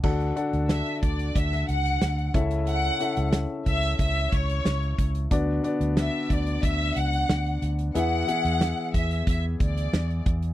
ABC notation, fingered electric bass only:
X:1
M:4/4
L:1/16
Q:1/4=91
K:Dlyd
V:1 name="Fingered electric bass" clef=bass
D,,2 z D,,2 z D,,2 D,,2 C,,2 D,,2 C,,2- | C,,2 z C,,2 z C,,2 C,,2 C,,2 C,,2 C,,2 | D,,2 z D,,2 z D,,2 D,,2 C,,2 D,,2 D,,2 | E,,2 z E,,2 z E,,2 E,,2 D,,2 E,,2 E,,2 |]